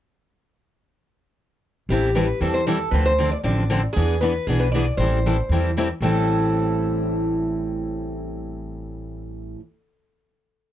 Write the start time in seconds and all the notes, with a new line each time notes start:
1.89 A1 E3 G3 C4 E4 G4 A4
2.16 E3 G3 C4 E4 A4 B4
2.41 E2 E3 G3 C4 E4 A4
2.54 C5
2.67 E3 G3 C4 E4 A4
2.91 D2 D3 F3 C4 D4 A4 B4
3.06 C5
3.20 D3 F3 C4 D4 A4
3.31 D5
3.44 A1 D3 F3 C4 D4 A4 D5
3.71 D3 F3 C4 D4 A4
3.93 E2 E3 B3 D4 G#4
3.97 G#4 B4
4.21 E3 B3 D4 G#4 B4
4.47 B1 E3 B3 D4 G#4 B4
4.60 B4
4.72 E3 B3 D4 G#4 D5
4.76 B4
4.97 A1 E3 G3 C4 E4 C5
5.01 A4
5.26 E3 G3 C4 E4 A4
5.49 E2 E3 G3 C4 E4 A4
5.77 E3 G3 C4 E4 A4
6.00 A1 A2 E3 G3 C4 A4
6.05 E4 A4